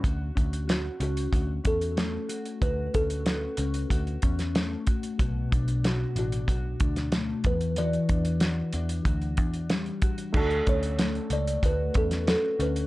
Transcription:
<<
  \new Staff \with { instrumentName = "Kalimba" } { \time 4/4 \key d \major \tempo 4 = 93 r4 fis'8 fis'4 a'4 r8 | b'8 a'2 r4. | r4 fis'8 fis'2 b'8 | d''2. r4 |
a'8 cis''4 d''8 b'8 a'8 a'8 b'8 | }
  \new Staff \with { instrumentName = "Upright piano" } { \time 4/4 \key d \major r1 | r1 | r1 | r1 |
<a d' fis' a'>1 | }
  \new Staff \with { instrumentName = "Clean electric guitar" } { \time 4/4 \key d \major fis'8 cis'8 fis'8 cis'8 fis'8 cis'8 a8 fis'8 | fis'8 cis'8 fis'8 cis'8 fis'8 cis'8 a8 fis'8 | <b, fis'>8 d'8 fis'8 d'8 fis'8 d'8 a8 e8 | <e fis'>8 d'8 fis'8 d'8 fis'8 d'8 g8 fis'8 |
r8 cis'8 a4 fis'8 cis'8 fis'8 cis'8 | }
  \new Staff \with { instrumentName = "Picked electric bass" } { \clef bass \time 4/4 \key d \major d,8 d,4 cis,8 d,8 e,4 r8 | d,8 d,4 cis,8 d,8 e,4 r8 | b,,8 b,,4 a,,8 b,,8 d,4 e,8~ | e,8 e,4 e,8 d,8 e,4 r8 |
d,8 d,4 cis,8 d,8 e,8. r16 d,8 | }
  \new DrumStaff \with { instrumentName = "Drums" } \drummode { \time 4/4 <hh bd>8 <hh bd>16 hh16 <hh sn>8 hh16 hh16 <hh bd>8 <hh bd>16 hh16 <hh sn>8 hh16 hh16 | <hh bd>8 <hh bd>16 hh16 <hh sn>8 hh16 hh16 <hh bd>16 hh16 <hh bd>16 <hh sn>16 <hh sn>8 <hh bd>16 hh16 | <hh bd>8 <hh bd>16 hh16 <hh sn>8 hh16 hh16 <hh bd>8 <hh bd>16 <hh sn>16 <hh sn>8 <hh bd>16 hh16 | hh16 hh16 <hh bd>16 hh16 <hh sn>8 hh16 hh16 <hh bd>16 hh16 <hh bd>16 hh16 <hh sn>16 hh16 <hh bd>16 hh16 |
<cymc bd>16 hh16 <hh bd>16 hh16 <hh sn>16 hh16 hh16 hh16 <hh bd>8 <hh bd>16 <hh sn>16 <hh sn>8 hh16 hh16 | }
>>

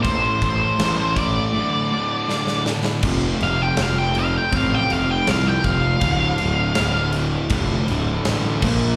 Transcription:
<<
  \new Staff \with { instrumentName = "Lead electric guitar" } { \time 4/4 \key d \minor \tempo 4 = 80 c''8 c''4 d''2 r8 | r8 f''16 g''16 f''16 g''16 f''16 g''16 f''16 g''16 f''16 g''16 f''16 g''16 f''8~ | f''4. r2 r8 | }
  \new Staff \with { instrumentName = "Distorted electric guitar" } { \clef bass \time 4/4 \key d \minor <a, e a>2 <d, a, d>2 | <f, c f>2 <f, c f>2 | <d, a, d>2 <d, a, d>4. <bes, f bes>8 | }
  \new Staff \with { instrumentName = "Overdriven electric guitar" } { \clef bass \time 4/4 \key d \minor <a, e a>8 <a, e a>8 <a, e a>8 <a, e a>8 <d, a, d>8 <d, a, d>8 <d, a, d>8 <d, a, d>8 | <f, c f>8 <f, c f>8 <f, c f>8 <f, c f>8 <f, c f>8 <f, c f>8 <f, c f>8 <f, c f>8 | <d, a, d>8 <d, a, d>8 <d, a, d>8 <d, a, d>8 <d, a, d>8 <d, a, d>8 <d, a, d>8 <bes, f bes>8 | }
  \new Staff \with { instrumentName = "Distorted electric guitar" } { \clef bass \time 4/4 \key d \minor <a, e a>8 <a, e a>8 <a, e a>8 <a, e a>8 <d, a, d>8 <d, a, d>8 <d, a, d>8 <d, a, d>8 | r1 | r1 | }
  \new Staff \with { instrumentName = "Picked electric bass" } { \clef bass \time 4/4 \key d \minor a,,8 a,,8 a,,4 r2 | f,,8 f,,8 f,,4 a,,8 f,,8 c,8 f,,8 | d,,8 d,,8 d,,4 f,,8 d,,8 a,,8 bes,,8 | }
  \new DrumStaff \with { instrumentName = "Drums" } \drummode { \time 4/4 <cymc bd>8 <cymc bd>8 <cymc sn>8 <cymc bd>8 r4 sn16 sn16 sn16 sn16 | <cymc bd>8 cymc8 <cymc sn>8 cymc8 <cymc bd>8 cymc8 <cymc sn>8 <cymc bd>8 | <cymc bd>8 cymc8 <cymc sn>8 cymc8 <cymc bd>8 cymc8 <cymc sn>8 <cymc bd>8 | }
>>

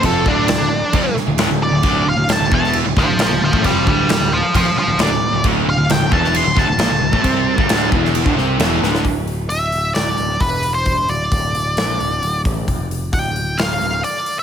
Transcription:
<<
  \new Staff \with { instrumentName = "Lead electric guitar" } { \time 4/4 \key d \minor \tempo 4 = 133 a'8 d'2 r4 d''8~ | d''8 f''8 a''8 a''8 r8 <f'' a''>8 <f'' a''>8 <f'' a''>8 | <d'' g''>8 <d'' g''>8 <d'' g''>8 <c'' f''>8 <c'' f''>8 <c'' f''>8 d''4 | r8 f''8 g''8 a''8 c'''8 a''4.~ |
a''4. r2 r8 | r4 e''4 d''4 b'8. c''16~ | c''8 d''2. r8 | r4 g''4 f''4 d''8. e''16 | }
  \new Staff \with { instrumentName = "Distorted electric guitar" } { \clef bass \time 4/4 \key d \minor <f, f>8 <d, d>8 d,16 d,8 r16 <f, f>16 r8 d,16 <d, d>16 d,8 d,16 | <d, d>8 d,16 d,16 d,16 d,16 <e, e>8. d,16 <d, d>16 d,16 <bes, bes>16 d,16 d,16 <a, a>16 | <f, f>8 <d, d>8 d,16 d,8 r16 <f, f>16 r8 d,16 <d, d>16 d,8 d,16 | <d, d>8 d,16 d,16 d,16 d,16 <e, e>8. d,16 <d, d>16 d,16 <bes, bes>16 d,16 d,16 <a, a>16 |
<c c'>8. <g, g>16 <d, d>8 <e, e>8. <d, d>16 <c c'>8 <e, e>8 <d, d>8 | r1 | r1 | r1 | }
  \new Staff \with { instrumentName = "Distorted electric guitar" } { \clef bass \time 4/4 \key d \minor <f, f>8 <d, d>8 d,16 d,8 r16 <f, f>16 r8 d,16 <d, d>16 d,8 d,16 | <d, d>8 d,16 d,16 d,16 d,16 <e, e>8. d,16 <d, d>16 d,16 <bes, bes>16 d,16 d,16 <a, a>16 | <f, f>8 <d, d>8 d,16 d,8 r16 <f, f>16 r8 d,16 <d, d>16 d,8 d,16 | <d, d>8 d,16 d,16 d,16 d,16 <e, e>8. d,16 <d, d>16 d,16 <bes, bes>16 d,16 d,16 <a, a>16 |
<c c'>8. <g, g>16 <d, d>8 <e, e>8. <d, d>16 <c c'>8 <e, e>8 <d, d>8 | r1 | r1 | r1 | }
  \new Staff \with { instrumentName = "Overdriven electric guitar" } { \clef bass \time 4/4 \key d \minor <f, f>8 <d, d>8 d,16 d,8 r16 <f, f>16 r8 d,16 <d, d>16 d,8 d,16 | <d, d>8 d,16 d,16 d,16 d,16 <e, e>8. d,16 <d, d>16 d,16 <bes, bes>16 d,16 d,16 <a, a>16 | <f, f>8 <d, d>8 d,16 d,8 r16 <f, f>16 r8 d,16 <d, d>16 d,8 d,16 | <d, d>8 d,16 d,16 d,16 d,16 <e, e>8. d,16 <d, d>16 d,16 <bes, bes>16 d,16 d,16 <a, a>16 |
<c c'>8. <g, g>16 <d, d>8 <e, e>8. <d, d>16 <c c'>8 <e, e>8 <d, d>8 | r1 | r1 | r1 | }
  \new Staff \with { instrumentName = "Picked electric bass" } { \clef bass \time 4/4 \key d \minor f,,8 d,,8 d,,16 d,,8 r16 f,,16 r8 d,,16 d,,16 d,,8 d,,16 | d,,8 d,,16 d,,16 d,,16 d,,16 e,,8. d,,16 d,,16 d,,16 bes,,16 d,,16 d,,16 a,,16 | f,,8 d,,8 d,,16 d,,8 r16 f,,16 r8 d,,16 d,,16 d,,8 d,,16 | d,,8 d,,16 d,,16 d,,16 d,,16 e,,8. d,,16 d,,16 d,,16 bes,,16 d,,16 d,,16 a,,16 |
c,8. g,,16 d,,8 e,,8. d,,16 c,8 e,,8 d,,8 | d,,4 d,,8 d,,8 d,,8 d,,8 e,,4~ | e,,8 d,,8 d,,8 d,,8 bes,,8 d,,8 d,,8 a,,8 | f,,4 d,,4 d,,8 d,,8 r4 | }
  \new DrumStaff \with { instrumentName = "Drums" } \drummode { \time 4/4 <cymc bd>8 bd8 <cymc sn>4 <cymc bd>8 sn8 <cymc sn>4 | <cymc bd>4 <cymc sn>8 bd16 sn16 cymc8 <bd sn>8 <cymc sn>8. bd16 | <cymc bd>8 bd8 <cymc sn>4 <cymc bd>4 <cymc sn>4 | <cymc bd>4 <cymc sn>8 bd16 sn16 cymc8 <bd sn>8 <cymc sn>8. bd16 |
<cymc bd>8. bd16 <cymc sn>8 bd16 sn16 cymc16 bd16 sn8 <cymc sn>8 sn16 sn16 | <hho bd>8 hho8 hho8 hho8 <hho sn>8 hho8 <hho bd>8 hho8 | <hho bd>8 hho8 <hho bd>8 hho8 <hho sn>8 hho8 hho8 <hho bd>8 | <hho bd>8 hho8 <hho bd>8 hho8 <hho sn>8 hho8 hho8 hho8 | }
>>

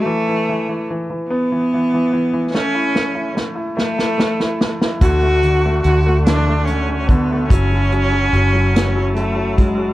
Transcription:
<<
  \new Staff \with { instrumentName = "Tonewheel organ" } { \time 6/8 \key fis \minor \tempo 4. = 48 r2. | r2. | <d a fis'>2. | <fis e' a''>2. | }
  \new Staff \with { instrumentName = "Cello" } { \time 6/8 \key fis \minor a4 r8 b4. | cis'4 r8 a4 r8 | fis'4 fis'8 d'8 cis'8 b8 | cis'2 a8 gis8 | }
  \new Staff \with { instrumentName = "Grand piano" } { \clef bass \time 6/8 \key fis \minor e16 e16 e16 e16 e16 e16 b16 e16 e16 e16 e16 e16 | a16 e'16 a16 e'16 a16 e'16 a16 e'16 a16 e'16 a16 e'16 | d16 a16 d16 a16 d16 a16 d16 a16 d16 a16 d16 a16 | fis16 fis16 fis16 fis16 fis16 fis16 cis'16 fis16 fis16 fis16 fis16 fis16 | }
  \new Staff \with { instrumentName = "Fingered electric bass" } { \clef bass \time 6/8 \key fis \minor r2. | r2. | d,4 d,2 | fis,,4 fis,,2 | }
  \new DrumStaff \with { instrumentName = "Drums" } \drummode { \time 6/8 r4. r4. | sn8 sn8 sn8 sn16 sn16 sn16 sn16 sn16 sn16 | <hh bd>8 hh8 hh8 <hh sn>8 hh8 <hh bd>8 | <hh bd>8 hh8 hh8 <hh sn>8 hh8 <hh bd>8 | }
>>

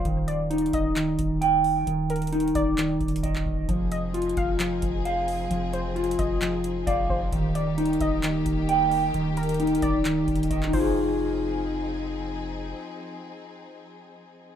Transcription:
<<
  \new Staff \with { instrumentName = "Synth pluck" } { \time 4/4 \key f \dorian \tempo 4 = 132 r8 d''4 ees''2~ ees''8 | r8 bes'4 d''4. r4 | r8 ees''4 f''2~ f''8 | r8 c''4 ees''4. d''8 c''8 |
r8 d''4 ees''2~ ees''8 | r8 bes'4 d''4. r8 c''8~ | c''2. r4 | r1 | }
  \new Staff \with { instrumentName = "Clean electric guitar" } { \time 4/4 \key f \dorian ees4 ees'4 ees4 g''4 | ees4 ees'4 ees4 ees''4 | f4 f'4 f4 f''4 | f4 f'4 f4 f''4 |
ees4 ees'4 ees4 g''4 | ees4 ees'4 ees4 ees''8 <ees' f' aes'>8~ | <ees' f' aes'>1~ | <ees' f' aes'>1 | }
  \new Staff \with { instrumentName = "String section" } { \time 4/4 \key f \dorian << { r1 | r1 | <f c' aes'>1~ | <f c' aes'>1 |
<ees bes g'>1~ | <ees bes g'>2.~ <ees bes g'>8 <f c' ees' aes'>8~ | <f c' ees' aes'>1~ | <f c' ees' aes'>1 | } \\ { r1 | r1 | ees'1 | ees'1~ |
ees'1~ | ees'2.~ ees'8 r8 | r1 | r1 | } >> }
  \new Staff \with { instrumentName = "808-style bass" } { \clef bass \time 4/4 \key f \dorian ees,,4. ees,,4 ees,,4. | ees,,4. ees,,4 ees,,8 ees,,8 ees,,8 | f,,4. f,,4 f,,4. | f,,4. f,,4. f,,8 f,,8 |
ees,,4. ees,,4 ees,,4. | ees,,4. ees,,4 ees,,8 ees,,8 f,,8~ | f,,1 | r1 | }
  \new DrumStaff \with { instrumentName = "Drums" } \drummode { \time 4/4 <hh bd>8 hh8 \tuplet 3/2 { hh16 hh16 hh16 <hh bd>16 r16 r16 } <hc hh>8 <hh bd>8 hh8 hho8 | hh8 hh32 hh32 hh32 hh32 \tuplet 3/2 { hh16 hh16 hh16 <hh bd>16 r16 r16 <hc hh>16 r16 r16 <hh bd>16 hh16 hh16 } <hh bd>16 hc16 bd8 | <hh bd>8 hh8 \tuplet 3/2 { hh16 hh16 hh16 <hh bd>16 r16 r16 } <hc hh>8 <hh bd>8 hh8 hho8 | hh8 hh8 \tuplet 3/2 { hh16 hh16 hh16 <hh bd>16 r16 r16 } <hc hh>8 hh8 <hh bd>8 bd8 |
<hh bd>8 hh8 \tuplet 3/2 { hh16 hh16 hh16 <hh bd>16 r16 r16 } <hc hh>8 <hh bd>8 hh8 hho8 | hh8 hh32 hh32 hh32 hh32 \tuplet 3/2 { hh16 hh16 hh16 <hh bd>16 r16 r16 <hc hh>16 r16 r16 <hh bd>16 hh16 hh16 } <hh bd>16 hc16 <cymc bd>8 | r4 r4 r4 r4 | r4 r4 r4 r4 | }
>>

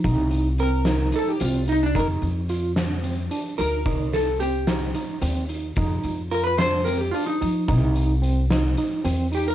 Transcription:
<<
  \new Staff \with { instrumentName = "Hollow-body jazz guitar" } { \time 7/8 \key c \dorian \tempo 4 = 110 r4 bes'4 a'16 g'16 f'8 ees'16 d'16 | bes'8 r2 r8 bes'8~ | bes'8 a'8 g'4 r4. | r4 bes'16 b'16 c''8 bes'16 g'16 f'16 ees'8.~ |
ees'8. r2 r16 g'16 bes'16 | }
  \new Staff \with { instrumentName = "Tine electric piano" } { \time 7/8 \key c \dorian ees'4 c'8 ees'8 ees'8 c'8 ees'8 | ees'4 f'8 d'8 c'8 d'8 ees'8 | ees'4 c'8 ees'8 ees'8 c'8 ees'8 | ees'4 f'8 d'8 c'8 d'8 ees'8 |
ees'4 c'8 ees'8 ees'8 c'8 ees'8 | }
  \new Staff \with { instrumentName = "Upright bass" } { \clef bass \time 7/8 \key c \dorian c,2 r8 c,4 | f,8 f,2 r8 d,8 | c,2 r8 ees,4 | f,8 f,2 r8 f8 |
c,2 r8 e,4 | }
  \new DrumStaff \with { instrumentName = "Drums" } \drummode { \time 7/8 <hh bd>8 hh8 hh8 <hh sn>8 hh8 hh8 hh8 | <hh bd>8 hh8 hh8 <hh sn>8 hh8 hh8 hh8 | <hh bd>8 <hh sn>8 hh8 <hh sn>8 hh8 hh8 hh8 | <hh bd>8 hh8 hh8 <hh sn>8 hh8 hh8 hh8 |
<hh bd>8 hh8 hh8 <hh sn>8 hh8 hh8 hh8 | }
>>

